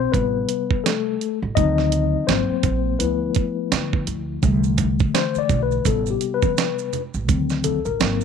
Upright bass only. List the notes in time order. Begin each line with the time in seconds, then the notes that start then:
0.14 A1
1.42 A1
1.57 D2
2.28 G#1
2.49 muted upright bass stroke
2.64 A#1
3.00 D2
3.72 D3
4.07 D2
4.43 C2
5.35 muted upright bass stroke
5.49 B1
5.85 A1
7.14 A1
7.29 D2
7.86 A1
8.01 G#1